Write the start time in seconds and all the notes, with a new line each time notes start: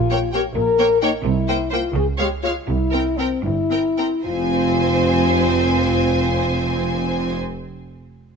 Already playing: A#1 A#2 F4
0.11 A#3 C#5 G5
0.33 A#3 G4 C#5 G5
0.56 A#1 A#2 A#4
0.79 A#3 C#5 G5
1.02 A#3 D#4 C#5 G5
1.24 C2 C3 E4
1.49 A#3 C5 G5
1.70 A#3 F4 C5 G5
1.95 C#2 C#3 G#4
2.18 G#3 G4 C#5 F5
2.43 G#3 F4 C#5 F5
2.67 C2 C3 E4
2.92 C4 A#4 G5
3.18 C4 A#4 G5
3.44 G1 G2 E4
3.71 C4 A#4 G5
3.98 C4 A#4 G5
4.24 F1 F2 C4 F4 C5 G#5